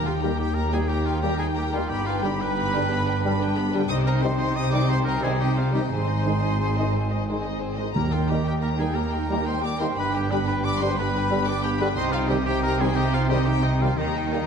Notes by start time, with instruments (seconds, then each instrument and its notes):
Already playing: cello section D#2, double bass section D#2, timpani D#3, clarinet D#4, flute G5
0.05 viola section D#4 G4, oboe F4, violin section F5 G5
0.21 trombone section D#3 G3, french horn section A#3 G4, oboe G4, viola section G4 A#4, violin section G5 A#5
0.38 viola section D#4 G4, oboe G4, violin section G5
0.55 viola section G4 A#4, oboe A#4, violin section A#5
0.72 trombone section D#3 G3, french horn section A#3 G4, viola section D#4 G4, oboe G#4, violin section G5 G#5
0.89 oboe G4, viola section G4 A#4, violin section G5 A#5
1.05 viola section D#4 G4, oboe F4, violin section F5 G5
1.22 trombone section D#3 G3, french horn section A#3 G4, oboe G4, viola section G4 A#4, violin section G5 A#5
1.38 viola section D#4 G4, oboe G#4, violin section G5 G#5
1.55 viola section G4 A#4, oboe G4, violin section G5 A#5
1.73 trombone section D#3 G3, french horn section A#3 G4, viola section D#4 G4, oboe F4, violin section F5 G5
1.89 double bass section G1, cello section G2, viola section B3 G4, oboe G4, violin section G5 B5
2.06 viola section D4 B4, oboe F4, violin section F5 G5
2.23 trombone section D3 G3, viola section B3 G4, french horn section D4 G4, oboe G4, violin section G5 B5
2.39 viola section D4 B4, oboe B4, violin section G5 B5
2.56 viola section B3 G4, violin section B5
2.74 trombone section D3 G3, viola section D4 B4, french horn section D4 G4, violin section G5
2.90 viola section B3 G4, clarinet D4, violin section B5
3.07 viola section D4 B4, violin section G5
3.23 trombone section D3 G3, viola section B3 G4, french horn section D4 G4, violin section B5
3.39 viola section D4 B4, violin section G5
3.56 viola section B3 G4, violin section B5
3.73 trombone section D3 G3, viola section D4 B4, french horn section D4 G4, violin section G5
3.89 double bass section C2, cello section C3, viola section C4 G4, clarinet D#4, violin section C5 D#6, oboe D#5, flute G5
4.05 viola section D#4 C5, oboe A#4, violin section D#5 A#5
4.21 trombone section D#3 G3, viola section C4 G4, french horn section C4 D#4, oboe C5, violin section C5 C6
4.38 viola section D#4 C5, oboe C5, violin section D#5 C6
4.55 viola section C4 G4, violin section C5 D#6, oboe D#5
4.71 trombone section D#3 G3, french horn section C4 D#4, viola section D#4 C5, oboe D5, violin section D#5 D6
4.89 viola section C4 G4, oboe C5, violin section C5 C6
5.05 viola section D#4 C5, oboe A#4, violin section D#5 A#5
5.21 trombone section D#3 G3, viola section C4 G4, french horn section C4 D#4, oboe G#4, violin section C5 G#5
5.38 viola section D#4 C5, oboe G4, violin section D#5 G5
5.56 viola section C4 G4, oboe F4, violin section C5 F5
5.72 trombone section D#3 G3, french horn section C4 D#4, viola section D#4 C5, oboe G4, violin section D#5 G5
5.90 double bass section G#1, cello section G#2, viola section C4 G#4, violin section C5 C6, oboe C5, flute G#5
6.07 viola section D#4 C5, violin section D#5
6.25 trombone section D#3 G#3, french horn section G#3 D#4, viola section C4 G#4, violin section C5
6.42 viola section D#4 C5, violin section D#5
6.59 viola section C4 G#4, violin section C5
6.77 trombone section D#3 G#3, french horn section G#3 D#4, viola section D#4 C5, violin section D#5
6.93 viola section C4 G#4, violin section C5
7.10 viola section D#4 C5, violin section D#5
7.28 trombone section D#3 G#3, french horn section G#3 D#4, viola section C4 G#4, violin section C5
7.44 viola section D#4 C5, violin section D#5
7.60 viola section C4 G#4, violin section C5
7.77 trombone section D#3 G#3, french horn section G#3 D#4, viola section D#4 C5, violin section D#5
7.93 double bass section D#2, cello section D#2, timpani D#3, viola section A#3 G4, clarinet D#4, oboe A#4, flute G5, violin section A#5
8.11 viola section D#4 A#4, oboe F4, violin section F5 G5
8.29 trombone section D#3 G3, viola section A#3 G4, french horn section A#3 D#4, oboe G4, violin section G5 A#5
8.45 viola section D#4 A#4, oboe G4, violin section G5
8.62 viola section A#3 G4, oboe A#4, violin section A#5
8.79 trombone section D#3 G3, french horn section A#3 D#4, viola section D#4 A#4, oboe G#4, violin section G5 G#5
8.95 viola section A#3 G4, oboe A#4, violin section A#5
9.12 viola section D#4 A#4, violin section G5
9.28 trombone section D#3 G3, viola section A#3 G4, french horn section A#3 D#4, violin section A#5
9.45 viola section D#4 A#4, oboe C5, violin section G5 C6
9.63 viola section A#3 G4, oboe D5, violin section A#5 D6
9.79 trombone section D#3 G3, french horn section A#3 D#4, viola section D#4 A#4, oboe C5, violin section G5 C6
9.96 double bass section G1, cello section G2, viola section B3 G4, clarinet D4, oboe B4, violin section B5
10.13 viola section D4 B4, oboe G4, violin section G5
10.30 trombone section D3 G3, viola section B3 G4, french horn section D4 G4, oboe B4, violin section B5
10.47 viola section D4 B4, oboe B4, violin section G5 B5
10.64 viola section B3 G4, oboe D5, violin section B5 D6
10.81 trombone section D3 G3, viola section D4 B4, french horn section D4 G4, oboe C5, violin section G5 C6
10.98 viola section B3 G4, oboe B4, violin section B5
11.15 viola section D4 B4, violin section G5
11.30 trombone section D3 G3, viola section B3 G4, french horn section D4 G4, violin section B5
11.47 viola section D4 B4, oboe D5, violin section G5 D6
11.63 viola section B3 G4, oboe G4, violin section G5 B5
11.79 trombone section D3 G3, viola section D4 B4, french horn section D4 G4, oboe B4, violin section G5 B5
11.95 double bass section C2, cello section C3, viola section C4 G4, clarinet D#4, oboe C5, violin section D#5 C6, flute G5
12.12 viola section D#4 C5, oboe F4, violin section F5 G5
12.28 trombone section D#3 G3, french horn section C4 G4, viola section C4 G4, oboe G4, violin section D#5 G5
12.45 viola section D#4 C5, clarinet D#4, oboe G4, violin section G5, flute G5
12.62 viola section C4 G4, oboe A#4, violin section D#5 A#5
12.79 trombone section D#3 G3, french horn section C4 G4, viola section D#4 C5, oboe G#4, violin section G5 G#5
12.96 viola section C4 G4, clarinet D#4, oboe G4, violin section D#5 G5, flute G5
13.13 viola section D#4 C5, oboe F4, violin section F5 G5
13.29 trombone section D#3 G3, french horn section C4 G4, viola section C4 G4, oboe G4, violin section D#5 G5
13.44 viola section D#4 C5, clarinet D#4, oboe G4, violin section G5, flute G5
13.63 viola section C4 G4, oboe D#4, violin section D#5
13.79 trombone section D#3 G3, french horn section C4 G4, viola section D#4 C5, oboe F4, violin section F5 G5
13.97 double bass section D#2, cello section D#3, viola section A#3 G4, clarinet D#4, oboe D#4, violin section D#5 A#5, flute G5
14.14 viola section D#4 A#4, violin section G5
14.31 trombone section D#3 G3, viola section A#3 G4, french horn section A#3 G4, violin section A#5